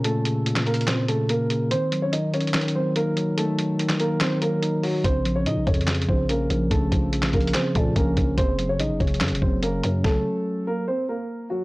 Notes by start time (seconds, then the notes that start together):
Already playing: A#2 C#3 C#4
0.04 A#2 A3 A4, closed hi-hat
0.25 C#3, closed hi-hat
0.46 A#2, closed hi-hat
0.56 snare, clap
0.66 A#2 A#3 A#4, closed hi-hat, open hi-hat
0.74 closed hi-hat
0.81 closed hi-hat
0.87 A#2 C4 C5, snare, clap, closed hi-hat
1.08 C#3 A3 A4, closed hi-hat
1.29 A#3 A#4, closed hi-hat
1.50 C#3, closed hi-hat
1.71 D#3 C4 C5, closed hi-hat
1.92 F#3, closed hi-hat
2.02 C#4 C#5
2.12 D#3 D#4 D#5, closed hi-hat
2.33 D#3 C#4 C#5, closed hi-hat
2.40 closed hi-hat
2.47 closed hi-hat
2.54 D#3, snare, clap, closed hi-hat
2.61 closed hi-hat
2.68 closed hi-hat
2.75 F#3 C4 C5
2.96 A#3 D#4 A#4, closed hi-hat
3.17 F#3, closed hi-hat
3.38 D#3 A3 A4, closed hi-hat
3.58 F#3, closed hi-hat
3.79 D#3, closed hi-hat
3.89 snare, clap
4.00 D#3 A#3 A#4, closed hi-hat
4.21 D#3 C4 C5, snare, clap, closed hi-hat
4.42 F#3 A#3 A#4, closed hi-hat
4.63 D#4, closed hi-hat
4.83 F#3 F#4, open hi-hat
5.04 A#1 C#3 C4 C5, kick, closed hi-hat
5.25 F3, closed hi-hat
5.36 C#4 C#5
5.46 A#2 C#3 D#4 D#5, closed hi-hat
5.57 A#1
5.67 F2 C#3 C#4 C#5, kick, closed hi-hat
5.74 closed hi-hat
5.81 closed hi-hat
5.87 C#3, snare, clap, closed hi-hat
5.95 closed hi-hat
6.02 closed hi-hat
6.08 A#1 F3 C4 C5, kick
6.29 A#3 C#4 A#4, closed hi-hat
6.50 A#1 F3, closed hi-hat
6.71 A#1 C#3 A3 A4, kick, closed hi-hat
6.92 A#1 F3, kick, closed hi-hat
7.13 C#3, closed hi-hat
7.22 snare, clap
7.33 A#1 C#3 A#3 A#4, kick, closed hi-hat, open hi-hat
7.41 closed hi-hat
7.47 closed hi-hat
7.54 C#3 C4 C5, snare, clap, closed hi-hat
7.75 A#2 F3 A3 A4, kick, closed hi-hat
7.96 A#1 A#3 C#4 A#4, kick, closed hi-hat
8.17 A#1 F3, kick, closed hi-hat
8.38 F#1 C#3 C4 C5, kick, closed hi-hat
8.58 F#3, closed hi-hat
8.69 C#4 C#5
8.79 A#1 C#3 D#4 D#5, closed hi-hat
8.90 F#1
9.00 F#1 C#3 C#4 C#5, kick, closed hi-hat
9.07 closed hi-hat
9.14 closed hi-hat
9.20 F#2 C#3, snare, clap, closed hi-hat
9.28 F#1, closed hi-hat
9.35 closed hi-hat
9.42 F#1 F#3 C4 C5, kick
9.63 A#3 C#4 A#4, closed hi-hat
9.83 F#2 F#3, closed hi-hat
10.04 A3 A4, kick, snare
10.67 A#3 A#4
10.88 C4 C5
11.09 A#3 A#4
11.50 F#3 F#4